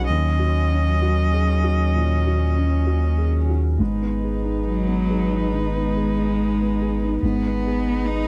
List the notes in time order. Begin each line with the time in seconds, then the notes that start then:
Already playing: B1 F#2 D#4 F#4 G#4
0.07 D#2 F#3 C#4 A#4 D#5
0.39 F#4
0.71 C#4
1.02 F#4
1.33 G#4
1.64 F#4
1.95 A#2
2.27 F#4
2.57 C#4
2.87 F#4
3.18 G#4
3.50 F#4
3.78 G#1 G#2 B3 D#4 G#4 B4
4.02 B3
4.24 G#4
4.44 D#4
4.67 F#3
4.88 B3
5.10 G#4
5.32 D#4
5.53 D#3 G#3
5.75 B3
5.97 G#4
6.18 D#4
6.61 B3
6.82 G#4
7.03 D#4
7.21 G#1 G#2 B3 D#4 G#4 B4
7.47 B3
7.67 G#4
7.88 D#4
8.06 D#4